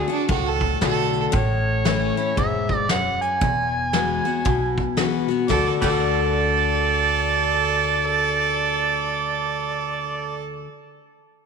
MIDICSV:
0, 0, Header, 1, 6, 480
1, 0, Start_track
1, 0, Tempo, 521286
1, 1222, Time_signature, 4, 2, 24, 8
1, 10551, End_track
2, 0, Start_track
2, 0, Title_t, "Harmonica"
2, 0, Program_c, 0, 22
2, 0, Note_on_c, 0, 68, 89
2, 231, Note_off_c, 0, 68, 0
2, 1245, Note_on_c, 0, 73, 90
2, 2156, Note_off_c, 0, 73, 0
2, 2194, Note_on_c, 0, 76, 89
2, 2635, Note_off_c, 0, 76, 0
2, 2673, Note_on_c, 0, 78, 96
2, 2942, Note_off_c, 0, 78, 0
2, 2960, Note_on_c, 0, 80, 98
2, 4547, Note_off_c, 0, 80, 0
2, 5064, Note_on_c, 0, 74, 82
2, 5228, Note_off_c, 0, 74, 0
2, 5352, Note_on_c, 0, 67, 61
2, 5352, Note_on_c, 0, 71, 61
2, 5352, Note_on_c, 0, 74, 87
2, 5415, Note_off_c, 0, 71, 0
2, 5419, Note_off_c, 0, 67, 0
2, 9602, Note_off_c, 0, 74, 0
2, 10551, End_track
3, 0, Start_track
3, 0, Title_t, "Fiddle"
3, 0, Program_c, 1, 110
3, 115, Note_on_c, 1, 62, 86
3, 264, Note_off_c, 1, 62, 0
3, 275, Note_on_c, 1, 66, 78
3, 440, Note_on_c, 1, 69, 79
3, 454, Note_off_c, 1, 66, 0
3, 742, Note_off_c, 1, 69, 0
3, 764, Note_on_c, 1, 69, 94
3, 1129, Note_off_c, 1, 69, 0
3, 5074, Note_on_c, 1, 69, 95
3, 5240, Note_off_c, 1, 69, 0
3, 5360, Note_on_c, 1, 69, 107
3, 9606, Note_off_c, 1, 69, 0
3, 10551, End_track
4, 0, Start_track
4, 0, Title_t, "Steel-string acoustic guitar"
4, 0, Program_c, 2, 25
4, 70, Note_on_c, 2, 66, 58
4, 87, Note_on_c, 2, 62, 50
4, 252, Note_off_c, 2, 66, 0
4, 260, Note_off_c, 2, 62, 0
4, 264, Note_on_c, 2, 45, 84
4, 748, Note_on_c, 2, 50, 57
4, 754, Note_on_c, 2, 57, 60
4, 760, Note_on_c, 2, 62, 62
4, 762, Note_on_c, 2, 66, 67
4, 1185, Note_off_c, 2, 45, 0
4, 1206, Note_off_c, 2, 50, 0
4, 1209, Note_off_c, 2, 57, 0
4, 1212, Note_off_c, 2, 62, 0
4, 1213, Note_off_c, 2, 66, 0
4, 1215, Note_on_c, 2, 45, 85
4, 1705, Note_on_c, 2, 52, 63
4, 1707, Note_on_c, 2, 57, 59
4, 1715, Note_on_c, 2, 61, 58
4, 1718, Note_on_c, 2, 64, 68
4, 1986, Note_off_c, 2, 52, 0
4, 1987, Note_off_c, 2, 57, 0
4, 1989, Note_off_c, 2, 64, 0
4, 1991, Note_off_c, 2, 61, 0
4, 2000, Note_on_c, 2, 64, 58
4, 2013, Note_on_c, 2, 61, 48
4, 2141, Note_off_c, 2, 45, 0
4, 2176, Note_off_c, 2, 64, 0
4, 2183, Note_off_c, 2, 61, 0
4, 2188, Note_on_c, 2, 44, 84
4, 2646, Note_off_c, 2, 44, 0
4, 2665, Note_on_c, 2, 42, 82
4, 3125, Note_off_c, 2, 42, 0
4, 3142, Note_on_c, 2, 40, 76
4, 3620, Note_on_c, 2, 52, 55
4, 3627, Note_on_c, 2, 56, 59
4, 3633, Note_on_c, 2, 59, 60
4, 3638, Note_on_c, 2, 66, 58
4, 3903, Note_off_c, 2, 52, 0
4, 3903, Note_off_c, 2, 66, 0
4, 3907, Note_off_c, 2, 56, 0
4, 3910, Note_off_c, 2, 59, 0
4, 3914, Note_on_c, 2, 66, 52
4, 3926, Note_on_c, 2, 59, 41
4, 4065, Note_off_c, 2, 40, 0
4, 4093, Note_off_c, 2, 66, 0
4, 4099, Note_off_c, 2, 59, 0
4, 4099, Note_on_c, 2, 47, 81
4, 4574, Note_on_c, 2, 52, 54
4, 4579, Note_on_c, 2, 56, 53
4, 4585, Note_on_c, 2, 59, 60
4, 4591, Note_on_c, 2, 66, 63
4, 4854, Note_off_c, 2, 66, 0
4, 4861, Note_off_c, 2, 52, 0
4, 4863, Note_off_c, 2, 56, 0
4, 4865, Note_on_c, 2, 66, 54
4, 4866, Note_off_c, 2, 59, 0
4, 4885, Note_on_c, 2, 59, 40
4, 5023, Note_off_c, 2, 47, 0
4, 5048, Note_on_c, 2, 50, 75
4, 5049, Note_off_c, 2, 66, 0
4, 5057, Note_on_c, 2, 57, 79
4, 5059, Note_off_c, 2, 59, 0
4, 5069, Note_on_c, 2, 62, 82
4, 5074, Note_on_c, 2, 66, 89
4, 5353, Note_off_c, 2, 50, 0
4, 5356, Note_off_c, 2, 57, 0
4, 5356, Note_on_c, 2, 50, 79
4, 5360, Note_on_c, 2, 57, 78
4, 5363, Note_off_c, 2, 62, 0
4, 5367, Note_on_c, 2, 62, 85
4, 5372, Note_off_c, 2, 66, 0
4, 5376, Note_on_c, 2, 66, 88
4, 9822, Note_off_c, 2, 50, 0
4, 9826, Note_off_c, 2, 57, 0
4, 9833, Note_off_c, 2, 62, 0
4, 9842, Note_off_c, 2, 66, 0
4, 10551, End_track
5, 0, Start_track
5, 0, Title_t, "Upright bass"
5, 0, Program_c, 3, 32
5, 270, Note_on_c, 3, 37, 76
5, 674, Note_off_c, 3, 37, 0
5, 749, Note_on_c, 3, 35, 81
5, 1154, Note_off_c, 3, 35, 0
5, 1230, Note_on_c, 3, 33, 84
5, 1931, Note_off_c, 3, 33, 0
5, 2190, Note_on_c, 3, 28, 75
5, 2891, Note_off_c, 3, 28, 0
5, 3144, Note_on_c, 3, 28, 84
5, 3847, Note_off_c, 3, 28, 0
5, 4102, Note_on_c, 3, 35, 73
5, 4806, Note_off_c, 3, 35, 0
5, 5068, Note_on_c, 3, 38, 82
5, 5230, Note_off_c, 3, 38, 0
5, 5364, Note_on_c, 3, 38, 82
5, 9793, Note_off_c, 3, 38, 0
5, 10551, End_track
6, 0, Start_track
6, 0, Title_t, "Drums"
6, 84, Note_on_c, 9, 42, 60
6, 177, Note_off_c, 9, 42, 0
6, 267, Note_on_c, 9, 42, 57
6, 268, Note_on_c, 9, 36, 106
6, 359, Note_off_c, 9, 42, 0
6, 360, Note_off_c, 9, 36, 0
6, 561, Note_on_c, 9, 36, 71
6, 653, Note_off_c, 9, 36, 0
6, 751, Note_on_c, 9, 38, 107
6, 751, Note_on_c, 9, 42, 58
6, 843, Note_off_c, 9, 38, 0
6, 843, Note_off_c, 9, 42, 0
6, 1043, Note_on_c, 9, 42, 59
6, 1135, Note_off_c, 9, 42, 0
6, 1225, Note_on_c, 9, 42, 63
6, 1228, Note_on_c, 9, 36, 106
6, 1317, Note_off_c, 9, 42, 0
6, 1320, Note_off_c, 9, 36, 0
6, 1706, Note_on_c, 9, 38, 97
6, 1706, Note_on_c, 9, 42, 59
6, 1798, Note_off_c, 9, 38, 0
6, 1798, Note_off_c, 9, 42, 0
6, 2000, Note_on_c, 9, 42, 66
6, 2092, Note_off_c, 9, 42, 0
6, 2184, Note_on_c, 9, 42, 60
6, 2185, Note_on_c, 9, 36, 101
6, 2276, Note_off_c, 9, 42, 0
6, 2277, Note_off_c, 9, 36, 0
6, 2479, Note_on_c, 9, 36, 74
6, 2571, Note_off_c, 9, 36, 0
6, 2663, Note_on_c, 9, 38, 107
6, 2663, Note_on_c, 9, 42, 64
6, 2755, Note_off_c, 9, 38, 0
6, 2755, Note_off_c, 9, 42, 0
6, 2961, Note_on_c, 9, 42, 59
6, 3053, Note_off_c, 9, 42, 0
6, 3145, Note_on_c, 9, 36, 104
6, 3145, Note_on_c, 9, 42, 61
6, 3237, Note_off_c, 9, 36, 0
6, 3237, Note_off_c, 9, 42, 0
6, 3622, Note_on_c, 9, 38, 99
6, 3622, Note_on_c, 9, 42, 51
6, 3714, Note_off_c, 9, 38, 0
6, 3714, Note_off_c, 9, 42, 0
6, 3924, Note_on_c, 9, 42, 60
6, 4016, Note_off_c, 9, 42, 0
6, 4104, Note_on_c, 9, 36, 110
6, 4104, Note_on_c, 9, 42, 60
6, 4197, Note_off_c, 9, 36, 0
6, 4197, Note_off_c, 9, 42, 0
6, 4398, Note_on_c, 9, 36, 70
6, 4490, Note_off_c, 9, 36, 0
6, 4578, Note_on_c, 9, 38, 106
6, 4578, Note_on_c, 9, 42, 54
6, 4670, Note_off_c, 9, 38, 0
6, 4670, Note_off_c, 9, 42, 0
6, 4874, Note_on_c, 9, 42, 53
6, 4966, Note_off_c, 9, 42, 0
6, 5063, Note_on_c, 9, 38, 79
6, 5065, Note_on_c, 9, 36, 101
6, 5155, Note_off_c, 9, 38, 0
6, 5157, Note_off_c, 9, 36, 0
6, 5361, Note_on_c, 9, 36, 89
6, 5362, Note_on_c, 9, 49, 77
6, 5453, Note_off_c, 9, 36, 0
6, 5454, Note_off_c, 9, 49, 0
6, 10551, End_track
0, 0, End_of_file